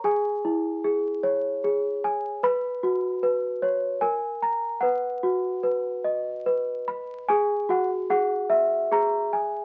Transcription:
\new Staff \with { instrumentName = "Celesta" } { \time 3/4 \key e \lydian \tempo 4 = 74 << { gis''2~ gis''8 r8 | b''2 gis''4 | fis''2~ fis''8 r8 | gis''8 fis''8 fis''4 ais''8 r8 | } \\ { gis'8 e'8 gis'8 cis''8 gis'8 gis''8 | b'8 fis'8 b'8 cis''8 ais'8 ais''8 | b'8 fis'8 b'8 dis''8 b'8 b''8 | gis'8 fis'8 gis'8 e''8 gis'8 gis''8 | } >> }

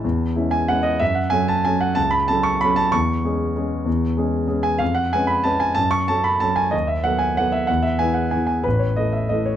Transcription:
<<
  \new Staff \with { instrumentName = "Grand piano" } { \time 3/4 \key cis \minor \tempo 4 = 187 a''4. gis''8 fis''8 dis''8 | e''8 fis''8 gis''8 a''8 gis''8 fis''8 | a''8 b''8 a''8 cis'''8 b''8 a''8 | cis'''2.~ |
cis'''2~ cis'''8 gis''8 | eis''8 fis''8 gis''8 b''8 a''8 gis''8 | a''8 cis'''8 a''8 b''8 a''8 gis''8 | dis''8 e''8 fis''8 gis''8 fis''8 e''8 |
fis''8 e''8 gis''8 fis''8 gis''8 gis''8 | b'8 cis''8 dis''8 e''8 dis''8 cis''8 | }
  \new Staff \with { instrumentName = "Grand piano" } { \time 3/4 \key cis \minor e,4 <gis cis' e'>4 <gis cis' e'>4 | fis,4 <fis cis' a'>4 <fis cis' a'>4 | cis,4 <fis cis' a'>4 <fis cis' a'>4 | e,4 <gis cis' gis'>4 <gis cis' gis'>4 |
e,4 <gis cis' gis'>4 <gis cis' gis'>4 | eis,4 <gis cis' b'>4 <gis cis' b'>4 | fis,4 <fis cis' a'>4 <fis cis' a'>4 | dis,4 <fis b a'>4 <fis b a'>4 |
e,4 <e b gis'>4 <e b gis'>4 | a,,4 <e a a'>4 <e a a'>4 | }
>>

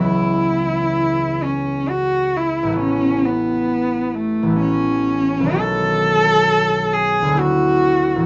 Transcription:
<<
  \new Staff \with { instrumentName = "Cello" } { \time 3/4 \key a \major \tempo 4 = 66 e'4. cis'8 fis'8 e'8 | cis'8 b4 a8 cis'4 | a'4. gis'8 fis'4 | }
  \new Staff \with { instrumentName = "Harp" } { \time 3/4 \key a \major <cis, e gis b cis'>2. | <a,, e a b cis'>2 <a,, e a b cis'>4 | <b,, dis gis b cis'>2 <d, d a b e'>4 | }
>>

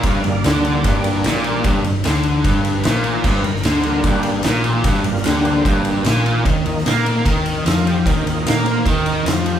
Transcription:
<<
  \new Staff \with { instrumentName = "Tonewheel organ" } { \time 4/4 \key g \minor \tempo 4 = 150 <d'' f''>8 <d'' f''>8 d''2. | r2. <b' c''>8 bes'8 | <b' c''>8 bes'8 c''8 bes'8 g'8 r8 bes'8 g'8~ | g'8 f'8 <fis' g'>8 <b' c''>8 <bes g'>4 r4 |
r2. bes'8 g'8~ | g'8 f'8 <fis' g'>8 <b' c''>8 ees'4 r8 <fis' g'>8 | }
  \new Staff \with { instrumentName = "Tonewheel organ" } { \time 4/4 \key g \minor r8 <g bes d'>2.~ <g bes d'>8 | <g bes d'>8 r2. r8 | r4. <g bes d'>4. r4 | r8 <g bes d'>4. r2 |
r8 <ees bes ees'>8 r2. | <ees bes ees'>4. r2 r8 | }
  \new Staff \with { instrumentName = "Distorted electric guitar" } { \clef bass \time 4/4 \key g \minor g,8 g,8 d4 g,4 bes,4 | g,8 g,8 d4 g,4 bes,4 | g,8 g,8 d4 g,4 bes,4 | g,8 g,8 d4 g,4 bes,4 |
ees8 ees8 bes4 ees4 f4 | ees8 ees8 bes4 ees4 f4 | }
  \new Staff \with { instrumentName = "Picked electric bass" } { \clef bass \time 4/4 \key g \minor g,,8 g,,8 d,4 g,,4 bes,,4 | g,,8 g,,8 d,4 g,,4 bes,,4 | g,,8 g,,8 d,4 g,,4 bes,,4 | g,,8 g,,8 d,4 g,,4 bes,,4 |
ees,8 ees,8 bes,4 ees,4 f,4 | ees,8 ees,8 bes,4 ees,4 f,4 | }
  \new DrumStaff \with { instrumentName = "Drums" } \drummode { \time 4/4 <bd cymr>8 cymr8 <cymr sn>8 cymr8 <bd cymr>8 cymr8 <cymr sn>8 cymr8 | <bd cymr>8 cymr8 <cymr sn>8 cymr8 <bd cymr>8 cymr8 <cymr sn>8 cymr8 | <cymc bd>8 cymr16 sn16 <cymr sn>8 cymr8 <bd cymr>8 cymr8 <cymr sn>8 cymr8 | <bd cymr>8 cymr16 sn16 <cymr sn>8 cymr8 <bd cymr>8 cymr8 <cymr sn>8 cymr8 |
<bd cymr>8 cymr16 sn16 <cymr sn>8 cymr8 <bd cymr>8 cymr8 <cymr sn>8 cymr8 | <bd cymr>8 cymr8 <cymr sn>8 cymr8 <bd cymr>8 cymr8 <cymr sn>8 cymr8 | }
>>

